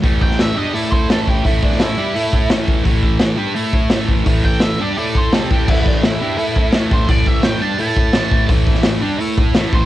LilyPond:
<<
  \new Staff \with { instrumentName = "Lead electric guitar" } { \time 4/4 \key a \minor \tempo 4 = 170 r8 g''8 e''8 dis''8 d''8 c''8 a'8 g'8 | e'8 d'8 e'2 r4 | r1 | r8 g''8 e''8 d''8 d''8 c''8 a'8 g'8 |
e'8 d'8 e'2 r8 c''8 | d''8 e''8 g''8 a''8 a''2 | r2. r8 c''8 | }
  \new Staff \with { instrumentName = "Distorted electric guitar" } { \time 4/4 \key a \minor <a, e a>4. <g d' g'>8 <a e' a'>4 <a, e a>4 | <a, e a>4. <g d' g'>8 <a e' a'>4 <a, e a>4 | <a, e a>4. <g d' g'>8 <a e' a'>4 <a, e a>4 | <a, e a>4. <g d' g'>8 <a e' a'>4 <c g c'>8 <a, e a>8 |
<a, e a>4. <g d' g'>8 <a e' a'>4 <a, e a>4 | <a, e a>4. <g d' g'>8 <a e' a'>4 <a, e a>4 | <a, e a>4. <g d' g'>8 <a e' a'>4 <a, e a>4 | }
  \new DrumStaff \with { instrumentName = "Drums" } \drummode { \time 4/4 <hho bd>8 bd16 sn16 <hho sn>4 hho8 bd8 <hho sn>8 bd8 | <hho bd>8 bd16 sn16 <hho sn>4 hho8 bd8 <hho sn>8 bd8 | <hho bd>8 bd8 <hho sn>4 hho8 bd8 <hho sn>8 bd8 | <hho bd>8 bd8 <hho sn>4 hho8 bd8 <hho sn>8 bd8 |
<cymc bd>8 bd8 <hho sn>4 hho8 bd8 <hho sn>8 bd8 | <hho bd>8 bd8 <hho sn>4 hho8 bd8 <hho sn>8 bd8 | <hho bd>8 bd16 sn16 <hho sn>4 hho8 bd8 <hho sn>8 bd8 | }
>>